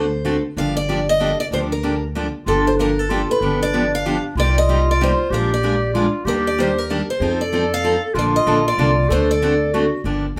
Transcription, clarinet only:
2.47 2.78 F4 medium
2.77 3.11 D4 medium
3.09 3.42 F4 medium
3.40 4.36 D4 medium
4.37 5.32 F4 loud
5.31 5.94 G4 loud
5.94 6.27 F4 medium
6.25 6.94 G4 loud
7.19 8.16 A4 loud
8.14 9.11 F4 loud
9.09 9.73 A4 loud
9.74 10.03 F#4 medium

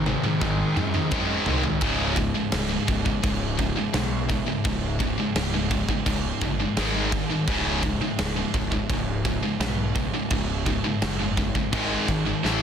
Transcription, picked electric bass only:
0.00 0.14 G#1 medium
0.42 0.63 G#1 medium
0.76 0.98 F#2 medium
1.12 1.33 F#2 medium
1.48 1.69 C2 medium
1.82 2.29 C#1 medium
2.52 2.76 C#1 loud
2.88 3.12 C#1 medium
3.24 3.70 C#1 medium
3.94 4.41 B1 medium
4.65 5.12 C#1 medium
5.35 5.82 C#1 medium
6.06 6.29 C#1 loud
6.42 6.65 G1 medium
6.77 7.24 G#1 medium
7.48 7.95 C#1 medium
8.19 8.42 C#1 medium
8.54 8.77 C#1 medium
8.90 9.36 C#1 medium
9.60 10.07 B1 medium
10.31 10.78 C#1 medium
11.02 11.49 F#1 medium
11.73 11.96 G#1 loud
12.08 12.32 G#1 medium
12.44 12.62 A1 medium

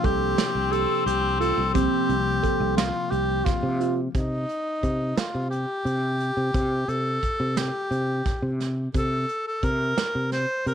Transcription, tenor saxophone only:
0.05 0.73 G4 loud
0.72 1.05 A4 medium
1.06 1.38 G4 medium
1.40 1.72 A4 medium
1.73 2.73 G4 medium
2.77 3.12 F4 medium
3.10 3.46 G4 medium
3.45 3.97 F4 medium
4.15 5.18 D#4 medium
5.17 5.50 F4 medium
5.50 6.90 G4 medium
6.89 7.59 A4 loud
7.57 8.60 G4 medium
8.95 9.43 A4 medium
9.47 9.65 A4 medium
9.64 10.32 A#4 medium
10.32 10.64 C5 medium
10.67 10.74 A#4 medium

